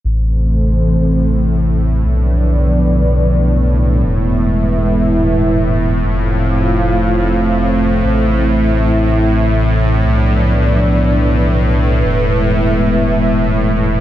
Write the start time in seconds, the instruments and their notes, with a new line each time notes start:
0.05 detuned saw bass A1, synth drone A2, analog synth pad E3 A3 C4 A4 C5
2.04 detuned saw bass B1, analog synth pad F3 B3 D4 B4 D5
4.04 detuned saw bass E1, analog synth pad G#3 E4 B4 E5
6.04 detuned saw bass F1, analog synth pad A3 C4 F4 C5 F5
8.05 detuned saw bass A1, analog synth pad E4 E5
10.04 detuned saw bass B1, analog synth pad F3 B3 D4 B4 D5
12.05 detuned saw bass E1, analog synth pad G#3 B3 E4 E5